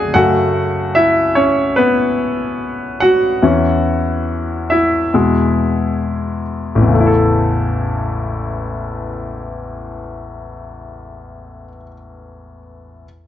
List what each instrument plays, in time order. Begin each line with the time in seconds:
Already playing: string section F#2 D3 A3, grand piano F#2 F#3 A3 D4 F#4 G#4 D5 F#5 G#5
0.14 grand piano F#2 C#3 A3 F#4 F#5
0.95 grand piano E4 E5
1.35 grand piano C#4 C#5
1.76 grand piano B3 B4
3.00 grand piano F#4 F#5
3.42 grand piano E2 E3 C#4
4.70 grand piano E4 E5
5.14 grand piano E2 B2 G#3
6.75 grand piano A1
6.82 grand piano E2
6.88 grand piano C#3
6.94 grand piano A3
7.00 grand piano E4
7.07 grand piano A4